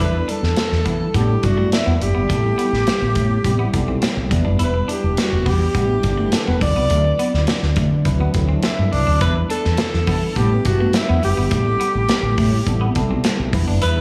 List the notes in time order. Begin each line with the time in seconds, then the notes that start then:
0.00 E2 G3 B3 D4 E4 A4 B4, kick
0.08 B4
0.14 muted clean electric guitar stroke
0.28 D4 A4, closed hi-hat
0.43 E2, snare
0.56 snare, closed hi-hat
0.72 E2, snare
0.85 E3 B3, kick, closed hi-hat
1.14 A2 G3 B3 D4 E4 G4 A4, kick, closed hi-hat
1.43 G2 F#3 B3 D4 E4 F#4 D5, muted clean electric guitar stroke, kick, closed hi-hat
1.50 G3
1.57 A3
1.72 E4, snare, closed hi-hat
1.86 E2 B3
2.01 F#1 G4, muted clean electric guitar stroke, closed hi-hat
2.15 G1 B3
2.29 A1 G3 A3 B3 C4 E4 A4, kick, closed hi-hat
2.44 muted clean electric guitar stroke
2.58 B3, closed hi-hat
2.72 A1, snare
2.87 snare, closed hi-hat
3.02 A1
3.15 A2 A3, kick, closed hi-hat
3.44 A1 G3 B3 C4 E4 G4, kick, closed hi-hat
3.59 B3
3.73 B1 G3 B3 C4 E4 A4, muted clean electric guitar stroke, kick, closed hi-hat
3.88 C4
4.02 C4, snare, closed hi-hat
4.17 B1
4.31 E2 G3 B3 D4 E4 B4, muted clean electric guitar stroke, kick, closed hi-hat
4.45 F#1 D4
4.59 E1 E4, closed hi-hat
4.64 B4
4.74 muted clean electric guitar stroke
4.88 D4 G4, closed hi-hat
5.03 E1
5.17 F#4, snare, closed hi-hat
5.32 E1
5.46 E2 B3 G4, kick, open hi-hat
5.75 A1 G3 B3 D4 E4 G4, kick, closed hi-hat
6.03 G1 G3 B3 D4 E4 A4, muted clean electric guitar stroke, kick, closed hi-hat
6.11 B4
6.17 A3
6.32 A4, snare, closed hi-hat
6.47 E1 B3 B4
6.61 D2 F#3 C4 D4 E4 B4 D5, muted clean electric guitar stroke, kick, open hi-hat
6.76 C2 B3
6.90 D2 A3, closed hi-hat
7.04 muted clean electric guitar stroke
7.19 B3, closed hi-hat
7.34 D2, snare
7.47 snare, closed hi-hat
7.62 D2, snare
7.76 D3 A3, kick, closed hi-hat
8.05 D2 F#3 C4 D4 E4 B4, kick, closed hi-hat
8.21 B3
8.34 D2 F#3 C4 D4 E4 A4, muted clean electric guitar stroke, kick, closed hi-hat
8.49 C4
8.63 C4 E4, snare, closed hi-hat
8.79 G2
8.92 C2 D4, muted clean electric guitar stroke, open hi-hat
9.07 D2 D4
9.21 E2 G3 B3 D4 E4 B4, kick, closed hi-hat
9.36 muted clean electric guitar stroke
9.50 D4 A4, closed hi-hat
9.65 E2, snare
9.77 snare, closed hi-hat
9.93 E2, snare
10.07 E3 B3, kick, open hi-hat
10.36 A2 G3 B3 D4 E4 G4 B4, kick, closed hi-hat
10.65 G2 F#3 B3 D4 E4 F#4 B4, muted clean electric guitar stroke, kick, closed hi-hat
10.72 G3
10.80 A3
10.93 E4, snare, closed hi-hat
11.09 E2 B3
11.23 F#1 G4, muted clean electric guitar stroke, open hi-hat
11.37 G1 B3
11.51 A1 G3 A3 B3 C4 E4 G#4, kick, closed hi-hat
11.59 A4
11.66 muted clean electric guitar stroke
11.80 B3, closed hi-hat
11.95 A1
12.09 snare, closed hi-hat
12.22 A1
12.38 A2 A3, kick, open hi-hat
12.67 A1 G3 B3 C4 E4 A4, kick, closed hi-hat
12.81 B3
12.95 B1 G3 B3 C4 E4 A4, muted clean electric guitar stroke, kick, closed hi-hat
13.11 C4
13.24 C4, snare, closed hi-hat
13.39 B1
13.53 E2 F#3 B3 D4 E4 B4, muted clean electric guitar stroke, kick, open hi-hat
13.59 G3
13.67 F#1 D4
13.82 E2 E4 B4, closed hi-hat
13.97 muted clean electric guitar stroke